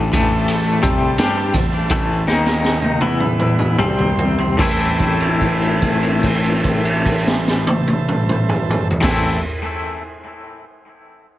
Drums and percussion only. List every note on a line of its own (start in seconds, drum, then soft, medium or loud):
0.13 kick loud
0.13 ride loud
0.48 ride medium
0.83 kick loud
0.83 ride medium
1.18 snare loud
1.18 ride loud
1.54 kick medium
1.54 ride medium
1.90 kick loud
1.90 ride medium
2.28 snare medium
2.46 snare medium
2.65 snare medium
2.82 high tom medium
3.01 high tom medium
3.20 mid tom medium
3.40 mid tom medium
3.59 mid tom medium
3.78 mid tom medium
3.98 floor tom medium
4.19 floor tom loud
4.38 floor tom medium
4.59 kick loud
4.59 crash medium
5.00 kick medium
5.00 crash soft
5.20 crash soft
5.41 kick medium
5.41 crash soft
5.62 crash soft
5.82 kick medium
5.82 crash soft
6.03 crash soft
6.23 kick medium
6.23 crash medium
6.44 crash soft
6.64 kick medium
6.64 crash medium
6.85 crash medium
7.06 kick medium
7.06 crash medium
7.27 snare loud
7.48 snare medium
7.67 high tom loud
7.88 high tom medium
8.09 mid tom medium
8.29 mid tom medium
8.49 mid tom loud
8.70 mid tom loud
8.91 floor tom medium
9.02 kick loud
9.02 snare loud
9.02 crash loud